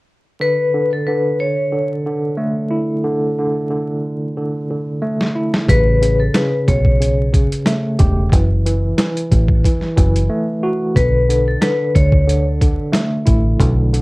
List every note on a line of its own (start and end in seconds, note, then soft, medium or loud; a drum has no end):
0.40 0.73 D3 medium
0.40 0.89 B4 loud
0.74 1.06 D3 medium
0.93 1.06 A4 medium
1.07 1.71 D3 medium
1.07 1.36 B4 medium
1.40 1.88 C#5 medium
1.72 2.05 D3 medium
2.06 3.03 D3 medium
2.37 5.01 A3 medium
2.71 5.34 E4 medium
3.04 3.37 D3 medium
3.39 3.69 D3 medium
3.70 4.36 D3 medium
4.37 4.69 D3 medium
4.70 5.69 D3 medium
5.02 5.68 A3 medium
5.21 snare medium
5.35 5.68 E4 medium
5.54 snare medium
5.68 6.28 A1 loud
5.68 6.00 C#3 medium
5.68 6.17 B4 loud
5.68 kick loud
5.68 closed hi-hat medium
6.02 6.33 C#3 medium
6.02 closed hi-hat medium
6.20 6.33 A4 medium
6.34 6.99 C#3 medium
6.34 6.64 B4 medium
6.34 snare loud
6.34 snare medium
6.34 closed hi-hat medium
6.68 7.48 B1 medium
6.68 7.16 C#5 medium
6.68 kick medium
6.68 closed hi-hat medium
6.85 kick medium
7.00 7.31 C#3 medium
7.00 closed hi-hat medium
7.33 8.32 C#3 medium
7.33 kick medium
7.33 closed hi-hat medium
7.52 closed hi-hat medium
7.66 8.32 A3 medium
7.66 snare loud
7.66 snare medium
7.66 closed hi-hat loud
7.99 8.29 E1 medium
7.99 8.32 G4 medium
7.99 kick medium
7.99 closed hi-hat medium
8.32 8.92 F#1 loud
8.32 8.65 E3 medium
8.32 kick loud
8.32 closed hi-hat medium
8.66 8.96 E3 medium
8.66 closed hi-hat medium
8.97 9.64 E3 medium
8.97 snare loud
8.97 snare medium
8.97 closed hi-hat medium
9.17 closed hi-hat medium
9.32 9.61 A1 medium
9.32 kick medium
9.32 closed hi-hat medium
9.48 kick medium
9.65 9.95 E3 medium
9.65 kick medium
9.65 closed hi-hat medium
9.81 snare soft
9.97 10.27 F#1 medium
9.97 10.96 E3 medium
9.97 kick medium
9.97 closed hi-hat medium
10.16 closed hi-hat medium
10.29 10.96 A3 medium
10.63 10.96 F#4 medium
10.95 11.55 B1 loud
10.95 11.28 D3 medium
10.95 11.44 B4 loud
10.95 kick loud
10.95 closed hi-hat loud
11.29 11.61 D3 medium
11.29 closed hi-hat medium
11.48 11.61 A4 medium
11.61 12.26 D3 medium
11.61 11.91 B4 medium
11.61 snare loud
11.61 snare medium
11.61 closed hi-hat medium
11.95 12.75 D2 medium
11.95 12.43 C#5 medium
11.95 kick medium
11.95 closed hi-hat medium
12.12 kick medium
12.27 12.60 D3 medium
12.27 closed hi-hat medium
12.61 13.58 D3 medium
12.61 kick medium
12.61 closed hi-hat medium
12.92 14.02 A3 medium
12.92 snare loud
12.92 snare medium
12.92 closed hi-hat medium
13.26 13.57 A1 medium
13.26 14.02 E4 medium
13.26 kick medium
13.26 closed hi-hat medium
13.59 14.02 B1 loud
13.59 13.92 D3 medium
13.59 kick loud
13.59 closed hi-hat medium
13.94 14.02 D3 medium
13.94 closed hi-hat medium